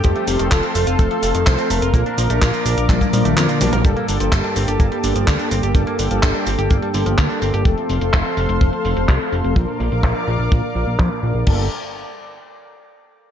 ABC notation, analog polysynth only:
X:1
M:4/4
L:1/16
Q:1/4=126
K:Gm
V:1 name="Analog polysynth"
[F,A,CA]3 [F,A,CA]12- [F,A,CA] | [B,,F,B,DB]3 [B,,F,B,DB]8- [B,,F,B,DB]3 [F,B,DB]2 | [G,,G,B,DA]3 [G,,G,B,DA]12- [G,,G,B,DA] | [G,,G,B,DA]3 [G,,G,B,DA]12- [G,,G,B,DA] |
[F,A,CA]3 [F,A,CA]12- [F,A,CA] | [B,,F,B,DB]3 [B,,F,B,DB]8- [B,,F,B,DB]3 [F,B,DB]2 | [G,B,DA]2 z12 z2 |]